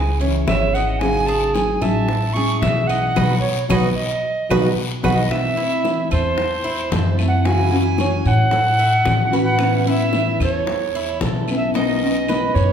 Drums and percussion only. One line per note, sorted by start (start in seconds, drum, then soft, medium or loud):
0.21 high bongo soft
0.48 high bongo medium
0.48 low bongo medium
0.48 short guiro medium
0.48 claves medium
0.74 high bongo soft
0.74 short guiro medium
1.01 high bongo medium
1.01 long guiro medium
1.01 claves medium
1.28 high bongo soft
1.55 high bongo medium
1.55 short guiro medium
1.82 high bongo soft
1.82 short guiro medium
1.82 claves medium
2.09 high bongo medium
2.09 long guiro medium
2.36 high bongo soft
2.62 high bongo medium
2.62 low bongo medium
2.62 short guiro medium
2.89 short guiro medium
2.89 claves medium
3.16 low bongo medium
3.16 long guiro medium
3.16 claves medium
3.70 low bongo medium
3.70 long guiro medium
3.70 claves loud
4.50 low bongo loud
4.50 long guiro medium
4.50 claves medium
5.04 low bongo medium
5.04 long guiro medium
5.04 claves loud
5.31 high bongo medium
5.31 long guiro medium
5.31 claves medium
5.58 high bongo soft
5.84 high bongo medium
5.84 short guiro medium
6.12 high bongo soft
6.12 short guiro medium
6.12 claves medium
6.38 high bongo medium
6.38 long guiro medium
6.65 high bongo soft
6.92 high bongo medium
6.92 low bongo medium
6.92 short guiro medium
7.19 short guiro medium
7.19 claves medium
7.45 high bongo medium
7.45 long guiro medium
7.98 high bongo medium
7.98 short guiro medium
7.98 claves medium
8.25 high bongo soft
8.25 short guiro medium
8.51 high bongo medium
8.51 long guiro medium
8.79 high bongo soft
9.05 high bongo medium
9.05 low bongo medium
9.05 short guiro medium
9.05 claves medium
9.33 high bongo soft
9.33 short guiro medium
9.59 high bongo medium
9.59 long guiro medium
9.59 claves medium
9.87 high bongo soft
10.13 high bongo medium
10.13 short guiro medium
10.40 high bongo soft
10.40 short guiro medium
10.40 claves medium
10.67 high bongo medium
10.67 long guiro medium
10.95 high bongo soft
11.21 high bongo medium
11.21 low bongo medium
11.21 short guiro medium
11.48 short guiro medium
11.48 claves medium
11.74 high bongo medium
11.74 long guiro medium
12.28 high bongo medium
12.28 short guiro medium
12.28 claves medium
12.55 high bongo soft
12.55 short guiro medium